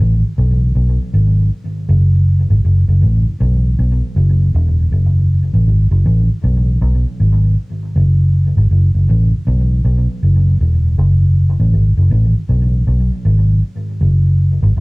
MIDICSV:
0, 0, Header, 1, 2, 480
1, 0, Start_track
1, 0, Key_signature, 3, "minor"
1, 0, Tempo, 757098
1, 1196, Time_signature, 4, 2, 24, 8
1, 9385, End_track
2, 0, Start_track
2, 0, Title_t, "Fingered electric bass"
2, 0, Program_c, 0, 33
2, 3, Note_on_c, 0, 33, 96
2, 139, Note_off_c, 0, 33, 0
2, 242, Note_on_c, 0, 35, 95
2, 464, Note_off_c, 0, 35, 0
2, 479, Note_on_c, 0, 35, 88
2, 617, Note_off_c, 0, 35, 0
2, 721, Note_on_c, 0, 32, 96
2, 944, Note_off_c, 0, 32, 0
2, 1198, Note_on_c, 0, 30, 97
2, 1562, Note_off_c, 0, 30, 0
2, 1588, Note_on_c, 0, 32, 86
2, 1673, Note_off_c, 0, 32, 0
2, 1679, Note_on_c, 0, 30, 91
2, 1817, Note_off_c, 0, 30, 0
2, 1830, Note_on_c, 0, 30, 83
2, 1913, Note_off_c, 0, 30, 0
2, 1921, Note_on_c, 0, 33, 91
2, 2058, Note_off_c, 0, 33, 0
2, 2159, Note_on_c, 0, 35, 107
2, 2383, Note_off_c, 0, 35, 0
2, 2401, Note_on_c, 0, 35, 91
2, 2539, Note_off_c, 0, 35, 0
2, 2639, Note_on_c, 0, 30, 94
2, 2863, Note_off_c, 0, 30, 0
2, 2882, Note_on_c, 0, 28, 89
2, 3105, Note_off_c, 0, 28, 0
2, 3119, Note_on_c, 0, 30, 97
2, 3483, Note_off_c, 0, 30, 0
2, 3510, Note_on_c, 0, 33, 81
2, 3594, Note_off_c, 0, 33, 0
2, 3601, Note_on_c, 0, 32, 81
2, 3739, Note_off_c, 0, 32, 0
2, 3747, Note_on_c, 0, 30, 82
2, 3833, Note_off_c, 0, 30, 0
2, 3840, Note_on_c, 0, 33, 94
2, 3978, Note_off_c, 0, 33, 0
2, 4081, Note_on_c, 0, 35, 91
2, 4305, Note_off_c, 0, 35, 0
2, 4320, Note_on_c, 0, 35, 93
2, 4458, Note_off_c, 0, 35, 0
2, 4563, Note_on_c, 0, 32, 90
2, 4786, Note_off_c, 0, 32, 0
2, 5044, Note_on_c, 0, 30, 95
2, 5406, Note_off_c, 0, 30, 0
2, 5432, Note_on_c, 0, 32, 92
2, 5516, Note_off_c, 0, 32, 0
2, 5521, Note_on_c, 0, 30, 84
2, 5659, Note_off_c, 0, 30, 0
2, 5671, Note_on_c, 0, 30, 75
2, 5755, Note_off_c, 0, 30, 0
2, 5765, Note_on_c, 0, 33, 90
2, 5901, Note_off_c, 0, 33, 0
2, 6003, Note_on_c, 0, 35, 100
2, 6226, Note_off_c, 0, 35, 0
2, 6243, Note_on_c, 0, 35, 94
2, 6380, Note_off_c, 0, 35, 0
2, 6485, Note_on_c, 0, 30, 87
2, 6707, Note_off_c, 0, 30, 0
2, 6726, Note_on_c, 0, 28, 80
2, 6948, Note_off_c, 0, 28, 0
2, 6964, Note_on_c, 0, 30, 105
2, 7326, Note_off_c, 0, 30, 0
2, 7353, Note_on_c, 0, 33, 80
2, 7436, Note_off_c, 0, 33, 0
2, 7441, Note_on_c, 0, 32, 80
2, 7579, Note_off_c, 0, 32, 0
2, 7591, Note_on_c, 0, 30, 82
2, 7676, Note_off_c, 0, 30, 0
2, 7678, Note_on_c, 0, 33, 102
2, 7818, Note_off_c, 0, 33, 0
2, 7920, Note_on_c, 0, 35, 89
2, 8145, Note_off_c, 0, 35, 0
2, 8161, Note_on_c, 0, 35, 96
2, 8299, Note_off_c, 0, 35, 0
2, 8401, Note_on_c, 0, 32, 97
2, 8625, Note_off_c, 0, 32, 0
2, 8882, Note_on_c, 0, 30, 96
2, 9245, Note_off_c, 0, 30, 0
2, 9273, Note_on_c, 0, 32, 90
2, 9357, Note_off_c, 0, 32, 0
2, 9362, Note_on_c, 0, 30, 88
2, 9385, Note_off_c, 0, 30, 0
2, 9385, End_track
0, 0, End_of_file